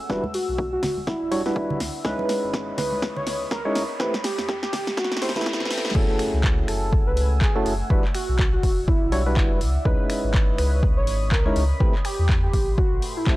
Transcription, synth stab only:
0.10 G3 D4 E4 F#4 B4
1.31 G3 D4 E4 F#4 C#5
1.46 G3 D4 E4 F#4 B4
2.05 G#3 C#4 D#4 E4 B4
3.65 G#3 C#4 D#4 E4 C#5
4.00 A3 C4 E4 G4 B4
5.22 A3 C4 E4 G4 C5
5.36 A3 C4 E4 G4 B4
5.95 A3 C#4 E4 F#4 G#4
7.55 A3 C#4 E4 F#4 A4
7.90 G3 D4 E4 F#4 B4
9.12 G3 D4 E4 F#4 C#5
9.26 G3 D4 E4 F#4 B4
9.85 G#3 C#4 D#4 E4 B4
11.46 G#3 C#4 D#4 E4 C#5
11.80 A3 C4 E4 G4 B4
13.27 A3 C4 E4 G4 A4

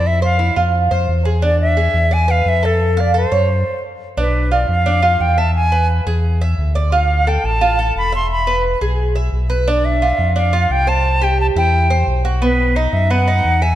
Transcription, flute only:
0.07 E5
0.24 F5
1.44 D5
1.61 E5
2.13 G#5
2.31 F5
2.49 E5
2.65 A4
3.00 D5
3.16 C5
4.19 B4
4.52 D5
4.70 F5
5.21 G5
5.38 A5
5.55 G#5
6.94 F5
7.28 G5
7.45 A5
7.98 B5
8.15 C6
8.32 B5
9.69 D5
9.85 E5
10.37 F5
10.72 G5
10.89 A5
11.23 G5
11.41 A5
11.58 G5
12.42 B4
12.76 D#5
12.93 E5
13.11 F#5
13.62 G#5

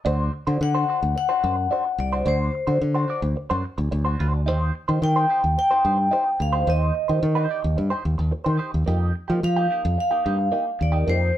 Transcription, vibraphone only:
0.63 F#5
1.18 F#5
2.00 D5
2.28 C5
5.04 G5
5.59 G5
6.42 F5
6.70 D#5
9.44 F5
10.00 F5
10.83 D5
11.10 C5

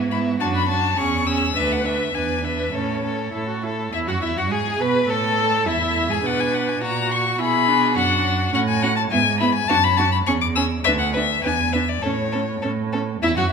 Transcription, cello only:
Already playing: G#2
0.41 F#2
0.98 E2
1.56 D2
2.14 E2
2.73 A2
3.34 A2
3.93 E2
4.08 F#2
4.22 E2
4.37 F#2
4.51 G#2
4.80 B2
5.09 A2
5.67 E2
6.10 G#2
6.24 B2
6.82 A#2
7.39 B2
7.96 F#2
8.53 A2
9.11 G#2
9.69 F#2
10.26 E2
10.84 D2
11.44 E2
12.02 A2
12.62 A2
13.21 E2
13.36 F#2

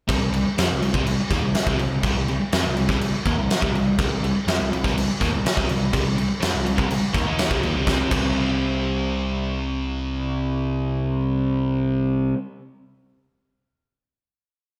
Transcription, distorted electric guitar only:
0.08 C3 G3
0.21 C3 G3
0.33 C3 G3
0.45 muted distorted electric guitar stroke
0.58 F3 C4
0.69 C3 G3
0.82 C3 G3
0.94 C3 G3
1.06 C3 G3
1.19 muted distorted electric guitar stroke
1.30 D#3 A#3
1.43 C3 G3
1.56 muted distorted electric guitar stroke
1.68 C3 G3
1.81 C3 G3
2.05 C3 G3
2.16 C3 G3
2.28 C3 G3
2.40 muted distorted electric guitar stroke
2.53 F3 C4
2.65 C3 G3
2.78 C3 G3
2.89 C3 G3
3.01 C3 G3
3.14 muted distorted electric guitar stroke
3.26 D#3 A#3
3.38 C3 G3
3.50 muted distorted electric guitar stroke
3.61 C3 G3
3.74 C3 G3
3.99 C3 G3
4.10 C3 G3
4.23 C3 G3
4.35 muted distorted electric guitar stroke
4.48 F3 C4
4.60 C3 G3
4.72 C3 G3
4.84 C3 G3
4.97 C3 G3
5.08 muted distorted electric guitar stroke
5.21 D#3 A#3
5.32 C3 G3
5.45 muted distorted electric guitar stroke
5.57 C3 G3
5.70 C3 G3
5.93 C3 G3
6.05 C3 G3
6.16 C3 G3
6.28 muted distorted electric guitar stroke
6.40 F3 C4
6.53 C3 G3
6.65 C3 G3
6.76 C3 G3
6.90 C3 G3
7.02 muted distorted electric guitar stroke
7.13 D#3 A#3
7.26 D#3 A#3 D#4
7.51 C3 G3
7.63 D#3 A#3
7.75 C3 G3
7.86 C3 G3 C4
8.10 C3 G3
8.14 C4

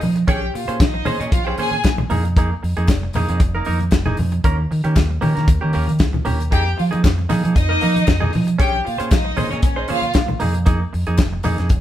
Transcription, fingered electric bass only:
0.03 F3
0.28 A#1
0.55 A#2
0.68 A#2
0.80 A#1
1.07 A#2
1.21 A#2
1.32 A#1
1.58 A#2
1.85 A#1
2.11 F2
2.64 F2
2.78 F2
2.88 F1
3.16 F2
3.29 F2
3.40 F1
3.68 F2
3.93 F1
4.19 F2
4.45 D#2
4.71 D#3
4.85 D#3
4.97 D#2
5.23 D#3
5.38 D#3
5.48 D#2
5.64 D#3
5.76 D#2
5.90 D#3
6.01 C#2
6.28 D#2
6.53 F2
6.80 F3
6.94 F3
7.05 F2
7.31 F3
7.45 F3
7.56 F2
7.83 F3
8.08 F2
8.35 F3
8.60 A#1
8.87 A#2
9.01 A#2
9.12 A#1
9.39 A#2
9.53 A#2
9.63 A#1
9.90 A#2
10.15 A#1
10.42 F2
10.94 F2
11.08 F2
11.19 F1
11.45 F2
11.59 F2
11.71 F1

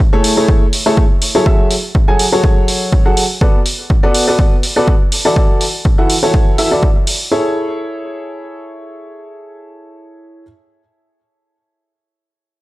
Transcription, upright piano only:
0.13 A3 E4 G#4 A4 C#5
0.37 A3 E4 G#4 A4 C#5
0.86 A3 E4 G#4 A4 C#5
1.35 F#3 E4 G#4 A4 C#5
1.46 F#3 F#4 G#4 A4 E5
2.08 F#3 F#4 G#4 A4 G#5
2.32 F#3 F#4 G#4 A4 C#5
3.06 F#3 F#4 G#4 A4 F#5
3.41 B3 F#4 A4 B4 D5
4.03 B3 F#4 A4 B4 D5
4.28 B3 F#4 A4 B4 D5
4.76 B3 F#4 A4 B4 D5
5.25 E3 E4 F#4 A4 D5
5.36 E3 E4 F#4 A4 D5
5.98 E3 E4 F#4 A4 F#5
6.23 E3 E4 F#4 A4 C#5
6.58 E3 E4 F#4 A4 E5
6.71 E3 E4 F#4 A4 D5
7.31 E4 G#4 A4 C#5

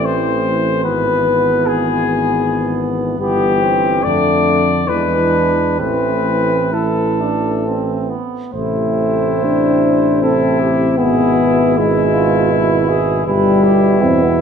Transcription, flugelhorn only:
Already playing: C4
0.84 B3
3.20 B3
3.62 C4
4.06 D4
4.88 D4
5.79 C4
6.73 E4
7.21 D4
7.65 C4
8.10 B3
8.53 C5
10.23 A4
10.60 G4
10.98 G#4
11.78 E4
12.14 F4
12.52 E4
12.89 G#4
13.27 B4
13.63 G4
14.02 E4

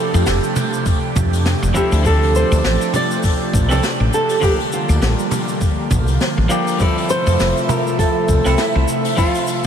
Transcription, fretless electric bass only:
0.14 F2
0.27 F1
1.16 F2
1.63 F1
1.92 D2
2.52 D2
2.64 A1
3.53 A1
3.70 C2
4.00 A1
4.89 D2
5.02 A1
5.91 A1
6.08 C2
6.38 A1
7.27 F2
7.39 F1
8.28 C2
8.46 C2
8.75 C2

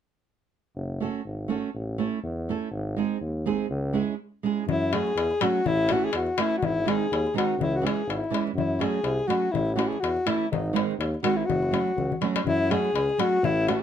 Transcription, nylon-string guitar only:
1.00 A3 C#4 F#4 A4
1.48 A3 C#4 F#4 A4
1.98 A3 C#4 E4 A4
2.49 A3 C#4 E4 A4
2.96 G#3 C4 D#4 G#4
3.46 G#3 C4 D#4 G#4
3.93 G#3 C#4 E4 G#4
4.43 G#3 C#4 E4 G#4
4.92 F#3 A3 C#4 F#4
5.41 F#3 A3 C#4 F#4
5.90 E3 A3 C#4 E4
6.38 E3 A3 C#4 E4
6.85 D#3 G#3 C4 D#4
7.34 D#3 G#3 C4 D#4
7.82 E3 G#3 C#4 E4
8.30 E3 G#3 C#4 E4
8.79 F#3 A3 C#4 F#4
9.28 F#3 A3 C#4 F#4
9.76 E3 A3 C#4 E4
10.26 E3 A3 C#4 E4
10.73 D#3 G#3 C4 D#4
11.23 D#3 G#3 C4 D#4
11.71 F#3 A3 C#4 F#4
12.21 F#3 A3 C#4 F#4
12.70 F#3 A3 C#4 F#4
13.18 F#3 A3 C#4 F#4
13.68 E3 A3 C#4 E4

